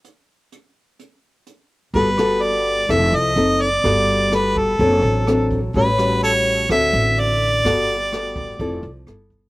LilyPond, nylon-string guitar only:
\new Staff \with { instrumentName = "Nylon-string guitar" } { \time 4/4 \key g \major \tempo 4 = 126 << { r1 | <b fis' a'>8 <b fis' a'>4. <c' e' a'>4 <c' dis' a'>8 r8 | <b fis' a'>4 <b fis' a'>4 <c' d' a'>4 <c' d' a'>8 r8 | <g cis' fis'>8 <g cis' fis'>4. <c' fis' a'>4. r8 |
<b fis' a'>8 r8 <b fis' a'>4 <c' e' a'>8 r8 <b e' a'>4 | } \\ { r1 | g2 f4 r4 | g2 fis2 | a,2 d2 |
g2 f4 r4 | } >> }